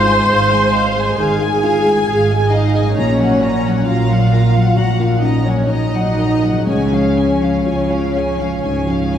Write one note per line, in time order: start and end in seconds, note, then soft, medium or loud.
0.00 0.17 G#1 medium
0.00 0.16 G#2 medium
0.00 1.13 G#2 medium
0.00 2.91 G#2 medium
0.00 0.06 G#3 soft
0.00 2.94 G#3 soft
0.00 0.18 F4 soft
0.00 2.96 F4 soft
0.00 1.13 C5 medium
0.00 2.98 D#5 soft
0.00 0.88 C6 medium
0.00 1.16 C6 medium
0.06 0.41 G#3 soft
0.06 0.28 G#5 soft
0.27 1.06 G#1 medium
0.27 1.07 G#2 medium
0.27 0.64 G#4 soft
0.27 0.49 F5 soft
0.51 0.87 G#3 soft
0.51 0.73 G#5 soft
0.72 1.08 D#5 soft
0.72 0.96 F5 soft
0.96 1.31 G#3 soft
0.96 1.19 G#5 soft
1.16 1.97 G#1 medium
1.16 1.96 G#2 medium
1.16 1.54 D#3 soft
1.16 2.52 G#4 medium
1.16 1.39 F5 soft
1.16 2.52 G#5 medium
1.39 1.75 G#3 soft
1.39 1.63 G#5 soft
1.63 1.99 F4 soft
1.63 1.85 F5 soft
1.85 2.20 G#3 soft
1.85 2.09 G#5 soft
2.07 2.86 G#1 medium
2.07 2.86 G#2 medium
2.07 2.43 G#4 soft
2.07 2.29 F5 soft
2.30 2.66 G#3 soft
2.30 2.53 G#5 soft
2.51 2.96 D#4 medium
2.51 2.96 D#5 medium
2.51 2.88 D#5 soft
2.51 2.97 D#5 medium
2.51 2.74 F5 soft
2.75 6.61 A#2 soft
2.75 2.97 G#3 soft
2.75 2.97 G#5 soft
2.83 6.64 F#3 soft
2.88 6.56 C#4 soft
2.92 3.86 C#4 medium
2.92 6.68 A#4 soft
2.92 3.84 C#5 medium
2.97 3.76 A#1 medium
2.97 3.76 A#2 medium
2.97 4.73 A#2 soft
2.97 3.88 C#5 medium
2.97 3.18 A#5 soft
3.19 3.55 F#3 soft
3.19 3.43 F#5 soft
3.42 3.78 C#4 soft
3.42 3.65 A#5 soft
3.66 4.01 F#3 soft
3.66 3.88 F#5 soft
3.85 4.66 A#1 medium
3.85 4.66 A#2 medium
3.85 4.73 F4 medium
3.85 4.23 F#4 soft
3.85 4.76 F5 medium
3.85 4.75 F5 medium
3.85 4.08 A#5 soft
4.09 4.45 F#3 soft
4.09 4.32 F#5 soft
4.32 4.68 A#4 soft
4.32 4.54 A#5 soft
4.55 4.90 F#3 soft
4.55 4.78 F#5 soft
4.75 5.58 A#1 soft
4.75 6.62 A#2 soft
4.75 5.58 A#2 soft
4.75 4.99 F#4 medium
4.75 4.99 F#5 medium
4.75 5.01 F#5 medium
4.75 4.99 A#5 soft
4.99 5.36 A#3 soft
4.99 5.22 F4 medium
4.99 5.22 F5 soft
4.99 5.24 F5 soft
4.99 5.23 F#5 soft
5.21 5.59 C#4 soft
5.21 5.45 D#4 medium
5.21 5.46 D#5 soft
5.21 5.47 D#5 soft
5.25 5.47 A#5 soft
5.45 5.83 F#3 soft
5.45 5.69 C#4 medium
5.45 5.69 C#5 soft
5.45 5.70 C#5 soft
5.45 5.70 F#5 soft
5.68 6.55 A#1 soft
5.68 6.55 A#2 soft
5.68 6.66 D#4 medium
5.68 6.07 F#4 soft
5.68 6.66 D#5 medium
5.68 6.67 D#5 medium
5.68 5.93 A#5 soft
5.93 6.32 F#3 soft
5.93 6.18 F#5 soft
6.18 6.57 A#4 soft
6.18 6.42 A#5 soft
6.43 6.67 F#3 soft
6.43 6.67 F#5 soft
6.49 9.18 C#3 soft
6.53 9.18 F3 soft
6.58 9.18 C#4 soft
6.58 9.18 G#4 soft
6.66 8.58 C#2 soft
6.66 7.54 C#2 soft
6.66 7.54 C#3 soft
6.66 9.18 C#4 medium
6.66 9.18 C#5 soft
6.66 6.91 G#5 soft
6.92 7.32 F3 soft
6.92 7.18 F5 soft
7.17 7.56 C#4 soft
7.17 7.42 G#5 soft
7.42 7.81 F3 soft
7.42 7.66 F5 soft
7.66 8.51 C#2 soft
7.66 8.51 C#3 soft
7.66 8.05 F4 soft
7.66 7.89 G#5 soft
7.90 8.29 F3 soft
7.90 8.14 F5 soft
8.15 8.53 G#4 soft
8.15 8.40 G#5 soft
8.39 8.77 F3 soft
8.39 8.63 F5 soft
8.61 9.18 C#2 soft
8.61 9.02 G#2 soft
8.61 9.18 C#3 soft
8.61 8.85 G#5 soft
8.86 9.18 F3 soft
8.86 9.12 F5 soft
9.12 9.18 C#4 soft
9.12 9.18 G#5 soft